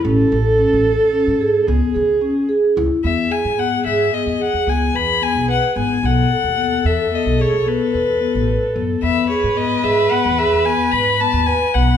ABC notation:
X:1
M:11/8
L:1/16
Q:1/4=110
K:E
V:1 name="Violin"
z16 z6 | e2 g2 f2 e2 d2 f2 g2 b2 g2 f2 g2 | f6 e2 d2 c2 B8 z2 | e2 c2 d2 e2 f2 e2 g2 b2 a2 g2 f2 |]
V:2 name="Viola"
A12 G8 z2 | G12 G8- G2 | A16- A6 | B16- B6 |]
V:3 name="Vibraphone"
C2 A2 C2 A2 C2 G2 B,2 G2 C2 G2 E2 | B,2 G2 B,2 G2 B,2 G2 B,2 B2 B,2 B2 B,2 | B,2 A2 B,2 A2 B,2 G2 B,2 B2 B,2 B2 B,2 | B,2 G2 B,2 G2 B,2 G2 B,2 B2 B,2 B2 B,2 |]
V:4 name="Upright bass" clef=bass
A,,,2 A,,,3 A,,,2 z2 G,,3 C,, z C,2 z4 C,, z | E,,2 z G,,3 G,,2 z E,,2 E,, C,,2 E,,3 B,,,2 z G,,,2 | B,,,2 z D,,3 E,,2 z B,,,2 B,,,2 z E,,3 A,,,2 z F,,2 | E,,2 z G,,3 G,,2 z E,,2 E,,2 z G,,3 D,,2 z B,,,2 |]